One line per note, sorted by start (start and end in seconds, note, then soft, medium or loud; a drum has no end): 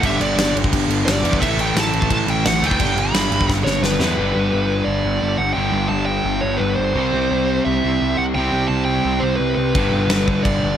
0.02 0.19 G1 medium
0.02 1.22 G2 medium
0.02 1.23 D3 loud
0.02 1.22 G3 loud
0.02 0.21 E5 medium
0.02 kick loud
0.02 crash medium
0.20 0.36 G1 medium
0.20 0.53 D5 medium
0.20 crash medium
0.37 0.53 G1 loud
0.37 snare loud
0.37 crash medium
0.55 0.71 G1 medium
0.55 crash medium
0.64 kick medium
0.73 0.88 G1 medium
0.73 kick medium
0.73 crash medium
0.88 1.05 G1 loud
0.88 crash medium
1.06 1.23 G1 loud
1.06 1.38 D5 medium
1.06 snare loud
1.06 crash medium
1.24 1.44 E2 loud
1.24 1.42 G2 medium
1.24 1.40 D3 medium
1.24 1.40 G3 medium
1.24 crash medium
1.33 kick medium
1.40 1.57 A1 loud
1.40 2.61 A2 loud
1.40 2.61 E3 loud
1.40 2.61 A3 loud
1.40 1.59 E5 medium
1.40 kick loud
1.40 crash medium
1.57 1.74 A1 loud
1.57 1.76 G5 medium
1.57 crash medium
1.75 1.91 A1 loud
1.75 snare loud
1.75 crash medium
1.80 2.11 A5 loud
1.93 2.09 A1 loud
1.93 crash medium
2.02 kick medium
2.10 2.26 A1 medium
2.10 2.30 A5 loud
2.10 kick medium
2.10 crash medium
2.27 2.43 A1 medium
2.27 2.46 G5 loud
2.27 crash medium
2.45 2.61 A1 medium
2.45 2.66 F#5 loud
2.45 snare loud
2.45 crash medium
2.62 2.78 D2 medium
2.62 2.80 A2 medium
2.62 2.79 E3 medium
2.62 2.78 A3 medium
2.62 3.00 G5 loud
2.62 crash medium
2.71 kick medium
2.78 2.95 G1 loud
2.78 3.99 G2 medium
2.78 4.00 D3 loud
2.78 3.98 G3 loud
2.78 kick loud
2.78 crash medium
2.96 3.12 G1 loud
2.96 3.46 B5 loud
2.96 crash medium
3.13 3.30 G1 loud
3.13 snare loud
3.13 crash medium
3.31 3.47 G1 loud
3.31 crash medium
3.41 kick medium
3.49 3.64 G1 medium
3.49 kick loud
3.49 snare medium
3.64 3.81 G1 medium
3.64 3.83 C#5 loud
3.64 snare medium
3.81 3.98 G1 medium
3.81 4.00 B4 loud
3.81 snare loud
3.99 4.16 E2 loud
3.99 4.16 G2 medium
3.99 4.17 D3 medium
3.99 4.16 G3 medium
3.99 4.90 B4 loud
3.99 snare loud
4.17 4.32 G1 medium
4.17 5.53 G2 medium
4.17 5.55 D3 medium
4.17 5.57 G3 loud
4.35 4.49 G1 medium
4.53 4.81 G1 medium
4.85 5.01 G1 medium
4.85 5.40 D5 loud
5.04 5.19 G1 medium
5.22 5.36 G1 medium
5.38 5.53 G1 medium
5.38 5.53 F#5 medium
5.53 5.71 G1 medium
5.53 6.94 G2 medium
5.53 6.95 D3 medium
5.53 5.87 G5 loud
5.58 6.97 G3 loud
5.72 5.87 G1 medium
5.89 6.19 G1 medium
5.89 6.05 A5 medium
6.06 6.40 G5 loud
6.24 6.39 G1 medium
6.41 6.57 G1 medium
6.41 6.61 C#5 loud
6.57 6.75 G1 medium
6.57 6.75 B4 loud
6.76 6.92 G1 medium
6.76 7.61 C5 loud
6.95 7.10 C2 loud
6.95 8.34 C3 loud
6.95 8.37 G3 loud
6.95 8.36 C4 loud
7.13 7.27 C2 medium
7.31 7.59 C2 medium
7.65 7.80 C2 medium
7.65 8.20 E5 medium
7.84 7.98 C2 medium
8.01 8.15 C2 medium
8.17 8.32 C2 medium
8.17 8.22 F#5 loud
8.35 8.49 C2 medium
8.35 9.75 C3 medium
8.35 9.77 G3 loud
8.35 8.68 G5 loud
8.39 9.76 C4 loud
8.52 8.67 C2 medium
8.68 8.98 C2 medium
8.68 8.84 A5 loud
8.85 9.23 G5 loud
9.05 9.19 C2 medium
9.20 9.37 C2 medium
9.20 9.36 C5 medium
9.36 9.54 C2 medium
9.36 9.54 B4 medium
9.55 9.71 C2 medium
9.55 10.46 B4 medium
9.75 9.89 G1 medium
9.75 10.77 G2 medium
9.75 10.77 D3 loud
9.75 10.77 G3 medium
9.75 kick loud
9.75 crash medium
9.92 10.06 G1 medium
10.10 10.38 G1 medium
10.10 snare loud
10.10 crash medium
10.28 kick medium
10.43 10.59 G1 medium
10.43 10.77 D5 medium
10.43 kick loud
10.43 crash medium
10.64 10.77 G1 medium